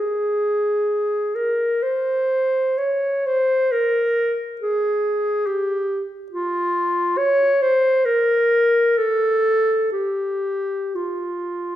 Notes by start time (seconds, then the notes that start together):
Already playing: G#4
1.35 A#4
1.83 C5
2.78 C#5
3.26 C5
3.72 A#4
4.62 G#4
5.46 G4
6.32 F4
7.17 C#5
7.62 C5
8.05 A#4
8.98 A4
9.92 G4
10.95 F4